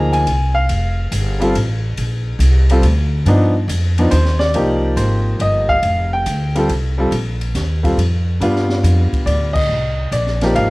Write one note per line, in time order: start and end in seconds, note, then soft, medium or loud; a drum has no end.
0.00 0.25 D2 loud
0.00 0.24 F3 medium
0.00 0.24 A#3 medium
0.00 0.24 D#4 medium
0.00 0.25 G#4 medium
0.13 0.52 G#5 medium
0.13 ride medium
0.27 0.68 C2 medium
0.27 ride medium
0.55 1.79 F5 loud
0.69 1.11 F1 medium
0.69 ride medium
1.11 1.53 G1 medium
1.11 hi-hat pedal medium
1.11 ride medium
1.40 1.53 G3 medium
1.40 1.53 C4 medium
1.40 1.54 F4 medium
1.40 1.54 A4 medium
1.40 ride medium
1.55 1.96 A1 medium
1.55 ride medium
1.97 2.38 A#1 medium
1.97 ride medium
2.39 2.81 C2 loud
2.39 hi-hat pedal medium
2.39 ride medium
2.70 2.82 G3 medium
2.70 2.82 C4 medium
2.70 2.83 F4 medium
2.70 2.83 A4 medium
2.70 ride medium
2.82 3.24 D2 loud
2.82 ride medium
3.26 3.67 G2 medium
3.26 3.52 F3 medium
3.26 3.52 B3 medium
3.26 3.53 D4 medium
3.26 3.53 D#4 medium
3.26 ride medium
3.68 4.10 F2 loud
3.68 hi-hat pedal medium
3.68 ride medium
3.98 4.11 F3 medium
3.98 4.11 B3 medium
3.98 4.11 D4 medium
3.98 4.11 D#4 medium
3.98 ride medium
4.11 4.53 D#2 loud
4.11 4.38 C5 medium
4.11 hi-hat pedal medium
4.11 ride medium
4.25 snare soft
4.39 4.98 D5 loud
4.39 snare medium
4.54 4.96 C2 medium
4.54 5.75 F3 medium
4.54 5.75 A#3 medium
4.54 5.75 D#4 medium
4.54 5.75 G4 medium
4.54 ride medium
4.96 5.38 G#1 medium
4.96 5.41 C5 medium
4.96 hi-hat pedal soft
4.96 ride medium
5.39 5.81 G1 medium
5.39 5.71 D#5 loud
5.39 ride medium
5.69 6.09 F5 loud
5.69 kick soft
5.83 6.24 F1 medium
5.83 ride medium
6.13 6.66 G5 medium
6.26 6.68 D2 medium
6.26 hi-hat pedal medium
6.26 ride medium
6.55 6.68 G3 medium
6.55 6.68 C4 medium
6.55 6.68 F4 medium
6.55 6.69 A4 medium
6.55 ride soft
6.69 7.10 C2 medium
6.69 ride medium
6.98 7.10 G3 medium
6.98 7.11 C4 medium
6.98 7.11 F4 medium
6.98 7.11 A4 medium
7.11 7.53 A#1 medium
7.11 ride medium
7.41 ride soft
7.55 7.96 D#2 medium
7.55 snare soft
7.55 hi-hat pedal medium
7.55 ride medium
7.83 7.96 G3 medium
7.83 7.96 C4 medium
7.83 7.96 F4 medium
7.83 7.97 A4 medium
7.83 kick medium
7.83 ride medium
7.97 8.39 F2 loud
7.97 ride medium
8.40 8.82 G2 medium
8.40 9.61 G3 medium
8.40 9.61 B3 medium
8.40 9.62 D4 medium
8.40 9.62 F4 medium
8.40 ride medium
8.56 snare soft
8.69 snare soft
8.83 9.10 F2 loud
8.83 hi-hat pedal medium
8.83 ride medium
9.13 muted upright bass stroke soft
9.13 kick medium
9.13 ride soft
9.26 9.68 D2 medium
9.26 9.53 D5 medium
9.26 ride medium
9.53 10.13 D#5 loud
9.53 kick medium
9.53 crash medium
9.69 10.11 C2 medium
10.11 10.53 A#1 medium
10.11 10.57 D5 medium
10.11 hi-hat pedal medium
10.11 ride medium
10.27 snare soft
10.41 10.70 F3 medium
10.41 10.70 A#3 medium
10.41 10.70 D#4 medium
10.41 10.70 G4 medium
10.41 snare soft
10.41 ride soft
10.55 10.70 G#1 medium
10.55 10.70 F5 loud
10.55 ride medium